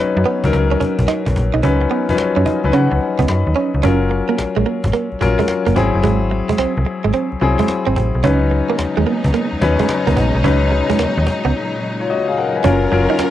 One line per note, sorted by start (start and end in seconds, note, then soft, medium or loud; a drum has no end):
0.00 0.44 F#3 medium
0.00 0.44 C#4 medium
0.00 0.45 D#4 medium
0.00 1.64 B4 medium
0.17 0.24 F#2 loud
0.17 cajon slap soft
0.26 0.40 B3 medium
0.26 cajon slap soft
0.44 0.52 C#2 loud
0.44 1.33 F#3 medium
0.44 1.34 C#4 medium
0.44 1.34 D#4 medium
0.44 1.34 A#4 medium
0.44 cajon bass medium
0.53 0.76 C#2 loud
0.53 muted clean electric guitar stroke soft
0.53 cajon slap medium
0.71 0.79 C#4 medium
0.71 cajon slap soft
0.80 0.95 C#4 medium
0.80 cajon bass medium
0.99 1.07 B1 medium
0.99 cajon bass medium
1.08 1.23 D#4 medium
1.08 cajon slap loud
1.26 1.34 B1 medium
1.26 muted clean electric guitar stroke soft
1.26 cajon bass medium
1.36 1.51 A#1 medium
1.36 cajon bass medium
1.54 1.62 B1 medium
1.54 1.61 D#4 medium
1.54 cajon slap soft
1.63 1.87 C#2 loud
1.63 2.00 F#3 medium
1.63 1.78 C#4 medium
1.63 2.01 C#4 medium
1.63 2.01 D#4 medium
1.63 2.01 B4 medium
1.63 cajon bass loud
1.81 muted clean electric guitar stroke soft
1.81 cajon slap soft
1.91 2.06 B3 medium
1.91 cajon slap soft
2.09 2.13 F#2 soft
2.09 2.13 F3 medium
2.09 2.53 C#4 medium
2.09 2.53 D#4 medium
2.09 2.53 B4 medium
2.09 cajon bass medium
2.15 2.56 F#3 medium
2.15 muted clean electric guitar stroke soft
2.15 cajon slap loud
2.36 2.45 F#2 medium
2.36 2.44 C#4 medium
2.36 cajon slap soft
2.46 2.61 D#4 medium
2.46 2.72 D#5 medium
2.46 cajon bass medium
2.64 2.72 C#2 medium
2.64 3.54 F#3 medium
2.64 3.54 C#4 medium
2.64 3.54 D#4 medium
2.64 3.54 B4 medium
2.64 cajon slap soft
2.73 2.89 C#3 loud
2.73 2.88 C#4 medium
2.73 3.25 F#5 medium
2.73 cajon slap medium
2.92 3.00 C#2 medium
2.92 muted clean electric guitar stroke soft
2.92 cajon slap soft
3.01 cajon slap soft
3.19 3.27 C#2 medium
3.19 3.27 B3 medium
3.19 cajon bass medium
3.28 3.44 F#2 loud
3.28 3.80 B5 medium
3.28 cajon slap loud
3.46 3.55 D#2 medium
3.46 cajon slap soft
3.56 3.71 C#4 medium
3.74 3.82 C#2 medium
3.74 cajon slap soft
3.83 4.22 F#1 loud
3.83 4.80 F#3 medium
3.83 3.98 C#4 medium
3.83 4.80 C#4 medium
3.83 4.80 F4 medium
3.83 4.80 A#4 medium
3.83 cajon bass loud
4.11 muted clean electric guitar stroke soft
4.11 cajon slap soft
4.29 4.37 A#3 medium
4.29 cajon slap soft
4.38 4.46 A#1 soft
4.38 muted clean electric guitar stroke soft
4.38 cajon slap loud
4.57 4.65 A#1 medium
4.57 4.64 G#3 medium
4.57 cajon slap soft
4.66 4.81 A#3 medium
4.84 4.92 G#1 loud
4.84 cajon bass loud
4.93 5.08 A#3 medium
4.93 cajon slap medium
5.12 5.16 A#1 soft
5.12 cajon slap soft
5.21 5.37 A#1 medium
5.21 5.74 F#3 medium
5.21 5.76 C#4 medium
5.21 5.76 F4 medium
5.21 5.77 A#4 loud
5.21 muted clean electric guitar stroke soft
5.21 cajon bass loud
5.39 5.47 G#3 medium
5.39 cajon bass medium
5.48 muted clean electric guitar stroke soft
5.48 cajon slap loud
5.67 5.75 F#1 medium
5.67 5.74 A#3 medium
5.67 cajon bass medium
5.76 5.91 G#1 loud
5.76 6.72 F#3 medium
5.76 6.73 C4 medium
5.76 5.91 C4 medium
5.76 6.73 E4 medium
5.76 6.73 G#4 loud
5.76 cajon bass medium
5.94 6.02 F#1 medium
5.94 cajon slap soft
6.04 6.42 G#1 loud
6.04 6.19 G#3 medium
6.04 cajon bass loud
6.22 cajon slap soft
6.31 muted clean electric guitar stroke soft
6.31 cajon slap soft
6.49 6.57 G#3 medium
6.49 cajon bass loud
6.58 6.66 C2 soft
6.58 6.74 C4 medium
6.58 cajon slap loud
6.77 6.85 C2 medium
6.77 cajon slap soft
6.87 muted clean electric guitar stroke soft
7.04 7.13 G#1 medium
7.04 7.12 G#3 medium
7.04 cajon slap soft
7.13 7.29 C4 medium
7.13 cajon slap medium
7.32 7.36 C2 medium
7.32 cajon slap soft
7.41 7.57 C2 loud
7.41 8.15 F#3 medium
7.41 8.15 C4 medium
7.41 8.15 E4 medium
7.41 8.16 G#4 medium
7.41 muted clean electric guitar stroke soft
7.41 cajon slap soft
7.59 7.67 G#3 medium
7.59 cajon bass loud
7.68 muted clean electric guitar stroke soft
7.68 cajon slap loud
7.86 7.95 G#1 medium
7.86 7.95 C4 medium
7.86 cajon slap soft
7.96 8.12 A1 loud
7.96 8.11 C4 medium
7.96 cajon bass medium
8.14 8.23 B1 medium
8.14 cajon slap soft
8.24 8.62 C#2 loud
8.24 12.60 C#3 medium
8.24 12.60 F#3 medium
8.24 9.20 F#3 medium
8.24 12.60 G#3 medium
8.24 10.42 B3 medium
8.24 8.39 C#4 loud
8.24 9.20 C#4 medium
8.24 12.60 D#4 loud
8.24 9.21 D#4 medium
8.24 9.21 B4 medium
8.24 cajon bass loud
8.42 cajon slap soft
8.51 muted clean electric guitar stroke soft
8.51 cajon slap soft
8.69 8.77 A#3 medium
8.69 cajon slap soft
8.79 8.87 D#2 medium
8.79 muted clean electric guitar stroke soft
8.79 cajon slap loud
8.97 9.05 D#2 medium
8.97 9.05 G#3 medium
8.97 cajon slap soft
9.07 9.21 A#3 medium
9.24 9.32 C#2 medium
9.24 cajon bass medium
9.34 9.49 A#3 medium
9.34 cajon slap medium
9.52 9.56 D#2 soft
9.52 cajon slap soft
9.61 9.77 D#2 loud
9.61 10.35 F#3 medium
9.61 10.35 C#4 medium
9.61 10.35 D#4 medium
9.61 10.36 B4 loud
9.61 muted clean electric guitar stroke soft
9.61 cajon bass loud
9.79 9.87 G#3 medium
9.79 cajon bass medium
9.89 muted clean electric guitar stroke soft
9.89 cajon slap loud
10.07 10.15 C#2 medium
10.07 10.15 A#3 medium
10.07 cajon bass medium
10.16 10.32 A#1 medium
10.16 10.31 B3 medium
10.16 cajon bass loud
10.35 10.43 B1 medium
10.35 cajon slap soft
10.44 10.82 C#2 loud
10.44 12.62 A#2 medium
10.44 11.40 F#3 medium
10.44 10.59 C#4 medium
10.44 11.40 C#4 medium
10.44 11.41 D#4 medium
10.44 11.41 B4 medium
10.44 cajon bass loud
10.62 cajon slap soft
10.72 muted clean electric guitar stroke soft
10.72 cajon slap soft
10.90 10.97 G#3 medium
10.90 cajon bass loud
10.99 11.07 D#2 soft
10.99 11.14 A#3 medium
10.99 cajon slap loud
11.17 11.25 D#2 loud
11.17 cajon slap soft
11.27 muted clean electric guitar stroke soft
11.27 cajon bass loud
11.45 11.53 C#2 medium
11.45 11.52 B3 medium
11.45 cajon slap soft
12.00 12.09 F4 medium
12.00 12.09 C#5 medium
12.10 12.27 F#4 medium
12.10 12.27 D#5 medium
12.28 12.37 G#4 medium
12.28 12.37 F5 medium
12.37 12.55 A#4 medium
12.37 12.54 F#5 medium
12.55 12.82 B4 medium
12.55 12.81 G#5 medium
12.64 12.87 F#1 loud
12.64 13.30 C#3 medium
12.64 13.30 F#3 medium
12.64 12.89 F#3 medium
12.64 13.30 A#3 medium
12.64 12.79 C#4 medium
12.64 12.89 C#4 medium
12.64 13.30 F4 medium
12.64 12.89 F4 medium
12.64 13.30 A#4 loud
12.64 12.89 A#4 medium
12.64 cajon bass loud
12.91 13.07 F#1 loud
12.91 13.30 F#3 medium
12.91 13.30 C#4 medium
12.91 13.30 F4 medium
12.91 13.30 A#4 loud
12.91 muted clean electric guitar stroke soft
12.91 cajon slap soft
13.10 13.18 D#4 medium
13.10 cajon slap soft
13.19 13.30 C#4 medium
13.19 cajon slap loud